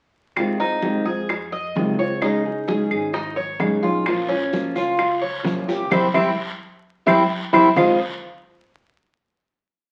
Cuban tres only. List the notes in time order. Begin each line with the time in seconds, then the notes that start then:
0.60 D#4
1.05 G#4
1.52 D#5
1.99 C#5
2.22 D#4
2.68 G#4
3.13 D#4
3.36 C#5
3.83 F4
4.29 C#4
4.76 F4
5.22 C#5
5.69 G4
5.91 C4 E4 G4
6.14 C4 E4 G4
7.07 C4 E4 G4
7.53 C4 E4 G4
7.76 F4 C5 D#5